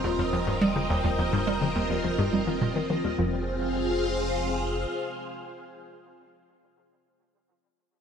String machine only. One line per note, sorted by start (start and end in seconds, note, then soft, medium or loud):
0.00 3.17 C4 medium
0.00 3.19 F4 medium
0.00 3.19 A#4 medium
0.00 0.43 C5 medium
0.00 3.19 D#5 medium
0.00 3.19 G5 medium
3.18 6.23 C4 medium
3.27 6.23 F4 medium
3.36 6.23 G#4 medium
3.44 6.23 C5 medium
3.53 6.23 F5 medium